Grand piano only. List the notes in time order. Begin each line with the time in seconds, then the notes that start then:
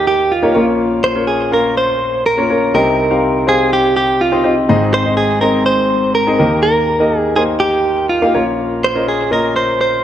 Already playing: D#2 D#3 A#3 D#4 G4 A#4 C#5 D#5
0.43 A#3 D#4 G4 A#4 C#5
0.55 A#1 A#2 A#3 C#4 F4 A#4 C#5
1.15 A#3 C#4 F4 A#4 C#5
1.52 A#3 C#4 F4 A#4 F5
2.37 A#3 C#4 F4 A#4 C#5
2.50 A#3 C#4 F4 A#4 C#5
2.74 C2 C3 C4 D#4 G4 C5 D#5
3.10 C4 D#4 G4 C5 F5
3.47 C4 D#4 G4 C5 F5
4.32 C4 D#4 G4 C5 D#5
4.44 C4 D#4 G4 C5 D#5
4.69 G#1 G#2 C4 D#4 G#4 C5 D#5
5.05 C4 D#4 G#4 C5 D#5
5.42 C4 D#4 G#4 C5 D#5
6.27 C4 D#4 G#4 C5 D#5
6.39 D#2 D#3 A#3 D#4 G4 A#4 D#5
7.00 A#3 D#4 G4 A#4 D#5
7.37 A#3 D#4 G4 A#4 C5
8.22 A#3 D#4 G4 A#4 F5
8.34 A#1 A#2 A#3 C#4 F4 A#4 C#5
8.95 A#3 C#4 F4 A#4 D#5
9.31 A#3 C#4 F4 A#4 D#5